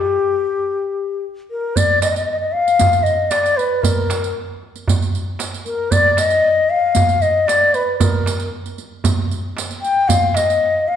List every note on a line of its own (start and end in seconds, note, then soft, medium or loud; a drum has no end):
0.00 1.25 G4 medium
0.07 darbuka ka soft
0.20 darbuka ka soft
0.34 darbuka ka soft
0.59 darbuka ka soft
1.51 1.78 A#4 medium
1.76 2.02 D5 loud
1.76 riq medium
1.76 darbuka dum medium
2.02 2.09 D#5 medium
2.02 riq soft
2.02 darbuka tek medium
2.10 2.16 D#5 medium
2.16 2.24 D#5 medium
2.16 riq soft
2.16 darbuka ka soft
2.25 2.31 D#5 medium
2.25 darbuka ka soft
2.31 2.39 D#5 medium
2.40 2.54 D#5 medium
2.53 3.05 F5 loud
2.53 darbuka ka soft
2.68 riq soft
2.79 riq medium
2.79 darbuka dum medium
2.93 riq soft
3.03 3.32 D#5 medium
3.03 riq soft
3.31 3.58 D5 medium
3.31 riq soft
3.31 darbuka tek medium
3.44 riq soft
3.44 darbuka ka soft
3.57 3.84 B4 medium
3.57 riq soft
3.82 4.35 A#4 medium
3.82 riq medium
3.82 darbuka dum medium
4.10 riq soft
4.10 darbuka tek medium
4.23 riq soft
4.23 darbuka ka soft
4.36 darbuka ka soft
4.63 darbuka ka soft
4.76 riq soft
4.88 riq medium
4.88 darbuka dum medium
5.02 riq soft
5.15 riq soft
5.39 riq soft
5.39 darbuka tek medium
5.52 riq soft
5.52 darbuka ka soft
5.66 5.93 A#4 medium
5.66 riq soft
5.91 6.11 D5 loud
5.91 riq medium
5.91 darbuka dum medium
6.11 6.20 D5 medium
6.17 6.71 D#5 loud
6.17 riq soft
6.17 darbuka tek medium
6.30 riq soft
6.30 darbuka ka soft
6.44 darbuka ka soft
6.70 7.23 F5 loud
6.70 darbuka ka soft
6.95 riq soft
6.95 darbuka dum medium
7.09 riq soft
7.22 7.49 D#5 medium
7.22 riq soft
7.47 7.76 D5 medium
7.47 riq soft
7.47 darbuka tek medium
7.61 darbuka ka soft
7.74 7.99 B4 medium
7.74 riq soft
8.00 8.48 A#4 medium
8.00 riq medium
8.00 darbuka dum loud
8.14 darbuka ka soft
8.26 riq soft
8.26 darbuka tek medium
8.40 riq soft
8.53 darbuka ka soft
8.66 riq soft
8.66 darbuka ka soft
8.78 riq soft
8.78 darbuka ka soft
8.92 darbuka ka soft
9.04 riq medium
9.04 darbuka dum loud
9.17 darbuka ka soft
9.31 riq soft
9.31 darbuka ka soft
9.57 riq medium
9.57 darbuka tek medium
9.71 riq soft
9.82 10.10 G5 loud
9.82 riq soft
9.82 darbuka ka soft
10.08 10.37 F5 loud
10.08 riq medium
10.08 darbuka dum medium
10.34 10.90 D#5 medium
10.34 riq soft
10.34 darbuka tek medium
10.48 riq soft
10.48 darbuka ka soft
10.62 darbuka ka soft
10.88 10.96 F5 medium
10.88 darbuka ka soft